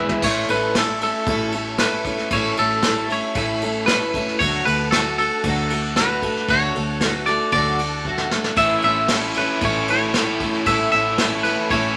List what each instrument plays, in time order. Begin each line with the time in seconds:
Already playing: overdriven electric guitar G#3 B3 E4 G#4, tonewheel organ G#4 B4 E5 B5, clean electric guitar B4 E5
0.00 twelve-string acoustic guitar B3 E4 G#4
0.09 floor tom
0.22 fingered electric bass A1, twelve-string acoustic guitar A2 E3 A3 C#4 E4 A4, tonewheel organ A4 C#5 E5 C#6, clean electric guitar C#5, kick, crash
0.48 fingered electric bass A1, twelve-string acoustic guitar A3 C#4 E4 A4, clean electric guitar B4, ride
0.74 twelve-string acoustic guitar A3 C#4 E4 A4, snare, ride
0.78 clean electric guitar A4
1.01 twelve-string acoustic guitar A3 C#4 E4 A4, clean electric guitar A4, ride
1.26 fingered electric bass A1, twelve-string acoustic guitar A2 E3 A3 C#4 E4 A4, kick, ride
1.52 twelve-string acoustic guitar C#4 E4 A4, ride
1.56 twelve-string acoustic guitar A3
1.78 twelve-string acoustic guitar A3 C#4 E4 A4, clean electric guitar B4, snare, ride
2.05 twelve-string acoustic guitar A3 C#4 E4 A4, kick, ride
2.18 snare
2.31 fingered electric bass A1, twelve-string acoustic guitar A2 E3 A3 C#4 E4 A4, clean electric guitar C#5, kick, ride
2.36 tonewheel organ B5
2.57 fingered electric bass A1, twelve-string acoustic guitar A3 C#4 E4 A4, clean electric guitar A4, ride
2.82 twelve-string acoustic guitar A3 C#4 E4 A4, snare, ride
3.08 twelve-string acoustic guitar A3 C#4 E4 A4, snare, ride
3.12 clean electric guitar C#5
3.35 fingered electric bass A1, twelve-string acoustic guitar A2 E3 A3 C#4 E4 A4, kick, ride
3.61 twelve-string acoustic guitar A3 C#4 E4 A4, ride
3.86 twelve-string acoustic guitar A3, clean electric guitar B4, snare, ride
3.91 twelve-string acoustic guitar C#4 E4 A4
4.14 twelve-string acoustic guitar A3 C#4 E4 A4, kick, ride
4.28 snare
4.39 fingered electric bass D2, twelve-string acoustic guitar D3 F#3 A3 F#4 A4, clean electric guitar C#5, tonewheel organ F#5 A5, kick, ride
4.43 tonewheel organ D4
4.65 fingered electric bass D2, twelve-string acoustic guitar A3 F#4 A4, clean electric guitar B4, ride
4.91 twelve-string acoustic guitar F#3 A3 F#4 A4, clean electric guitar A4, snare, ride
5.18 twelve-string acoustic guitar A3 F#4 A4, clean electric guitar A4, ride
5.44 fingered electric bass D2, twelve-string acoustic guitar D3 F#3 A3 F#4 A4, kick, ride
5.70 twelve-string acoustic guitar A3 F#4 A4, ride
5.96 twelve-string acoustic guitar F#3 A3 F#4 A4, clean electric guitar B4, snare, ride
6.22 twelve-string acoustic guitar A3 F#4 A4, kick, ride
6.37 snare
6.48 fingered electric bass D2, twelve-string acoustic guitar D3 F#3 A3 F#4 A4, clean electric guitar C#5, kick, ride
6.75 fingered electric bass D2, twelve-string acoustic guitar A3 F#4 A4, ride
7.01 twelve-string acoustic guitar F#3 A3 F#4, snare, ride
7.05 twelve-string acoustic guitar A4
7.09 clean electric guitar B4
7.26 twelve-string acoustic guitar A3 F#4 A4, clean electric guitar D5, snare, ride
7.52 fingered electric bass D2, twelve-string acoustic guitar D3 F#3 A3 F#4 A4, clean electric guitar D5, kick, ride
7.79 twelve-string acoustic guitar A3 F#4 A4, ride
8.05 twelve-string acoustic guitar F#3 A3 F#4 A4, kick
8.18 snare
8.30 twelve-string acoustic guitar A3 F#4 A4, snare
8.44 snare
8.56 fingered electric bass A1, twelve-string acoustic guitar A2 E3 A3 C#4 E4 A4, tonewheel organ C#5 E5 C#6, clean electric guitar E5, kick, crash
8.82 fingered electric bass A1, twelve-string acoustic guitar E4 A4, clean electric guitar E5, ride
8.86 twelve-string acoustic guitar A3 C#4
9.08 overdriven electric guitar E3, twelve-string acoustic guitar A3 C#4 E4, snare, ride
9.13 twelve-string acoustic guitar A4
9.34 twelve-string acoustic guitar A4, clean electric guitar B4, ride
9.38 twelve-string acoustic guitar A3 C#4 E4
9.61 fingered electric bass A1, twelve-string acoustic guitar A2 E3 A3 C#4 E4 A4, clean electric guitar C#5, kick, ride
9.88 twelve-string acoustic guitar A4, clean electric guitar C#5, ride
9.92 twelve-string acoustic guitar A3 C#4 E4
10.14 overdriven electric guitar A2 E3, twelve-string acoustic guitar A3 C#4, snare, ride
10.18 twelve-string acoustic guitar E4 A4
10.40 twelve-string acoustic guitar A3 C#4 E4 A4, kick, ride
10.53 snare
10.65 fingered electric bass A1, twelve-string acoustic guitar A2 E3 A3 C#4 E4 A4, clean electric guitar E5, tonewheel organ F#5, kick, ride
10.92 fingered electric bass A1, twelve-string acoustic guitar C#4 E4 A4, clean electric guitar E5, ride
10.96 twelve-string acoustic guitar A3
11.18 overdriven electric guitar E3, twelve-string acoustic guitar A3 C#4 E4 A4, snare, ride
11.43 twelve-string acoustic guitar A3 C#4 E4 A4, clean electric guitar B4, snare, ride
11.70 fingered electric bass A1, twelve-string acoustic guitar A2 E3 A3 C#4 E4 A4, clean electric guitar C#5, kick, ride